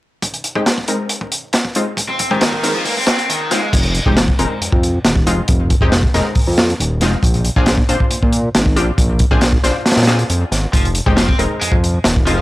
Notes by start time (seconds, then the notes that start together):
0.22 kick, closed hi-hat
0.34 closed hi-hat
0.44 closed hi-hat
0.55 G#3 C4 D#4 G4, kick
0.66 snare, closed hi-hat
0.78 kick
0.88 G#3 C4 D#4 A#4, closed hi-hat
1.09 closed hi-hat
1.21 kick
1.32 closed hi-hat
1.53 snare, closed hi-hat
1.65 kick
1.75 G#3 C4 D#4 F4, closed hi-hat
1.97 kick, closed hi-hat, noise sweep
2.09 C4
2.19 kick, closed hi-hat
2.31 D#3 G#3 C4 D#4 G4, kick
2.41 D#3, snare, closed hi-hat
2.52 kick
2.63 G#3 C4 D#4 A#4, snare, closed hi-hat
2.75 F3
2.85 A#3, open hi-hat
2.97 C4
3.07 snare, closed hi-hat
3.19 closed hi-hat
3.29 D#3, closed hi-hat
3.51 G#3 C4 D#4 F4, snare, closed hi-hat
3.73 F1, kick, closed hi-hat, crash
3.83 closed hi-hat
3.95 closed hi-hat
4.06 F1 G#3 C4 D#4 G4, kick
4.17 snare, closed hi-hat
4.28 kick
4.39 F1 G#3 C4 D#4 A#4, closed hi-hat
4.61 F2, closed hi-hat
4.72 F2, kick
4.83 closed hi-hat
5.05 D#1, snare, closed hi-hat
5.16 kick
5.26 F1 G#3 C4 D#4 F4, closed hi-hat
5.48 F1, kick, closed hi-hat
5.70 kick, closed hi-hat
5.81 F1 G#3 C4 D#4 G4, kick
5.92 snare, closed hi-hat
6.03 kick
6.14 F1 G#3 C4 D#4 A#4, snare, closed hi-hat
6.35 kick, open hi-hat
6.47 F2
6.58 snare, closed hi-hat
6.70 closed hi-hat
6.80 D#1, closed hi-hat
7.01 F1 G#3 C4 D#4 F4, snare, closed hi-hat
7.23 A#1, kick, closed hi-hat
7.34 closed hi-hat
7.45 closed hi-hat
7.56 A#1 C4 D4 F4 G#4, kick
7.66 snare, closed hi-hat
7.78 kick
7.89 A#1 C4 D4 F4 C5, closed hi-hat
8.00 kick
8.11 A#2, closed hi-hat
8.23 A#2, kick
8.33 closed hi-hat
8.55 G#1, snare, closed hi-hat
8.66 kick
8.76 A#1 C4 D4 F4 G4, closed hi-hat
8.98 A#1, kick, closed hi-hat
9.19 kick, closed hi-hat
9.31 A#1 C4 D4 F4 G#4, kick
9.41 snare, closed hi-hat
9.52 kick
9.63 A#1 C4 D4 F4 C5, snare, closed hi-hat
9.86 snare, closed hi-hat
9.91 snare, closed hi-hat
9.96 A#2, snare, closed hi-hat
10.03 snare, closed hi-hat
10.07 C4 D4 F4 G#4, snare, closed hi-hat
10.19 closed hi-hat
10.30 F2, closed hi-hat
10.52 G#1, snare, closed hi-hat
10.73 F1 F3, kick, closed hi-hat
10.85 closed hi-hat
10.95 closed hi-hat
11.06 F1 G#3 C4 D#4 G4, kick
11.17 F3, snare, closed hi-hat
11.28 C4, kick
11.39 F1 G#3 C4 D#4 A#4, closed hi-hat
11.61 F2 G#3, closed hi-hat
11.72 F2, kick
11.84 closed hi-hat
12.04 D#1, snare, closed hi-hat
12.16 kick
12.27 F1 F3 G#3 C4 D#4 F4, closed hi-hat
12.37 F3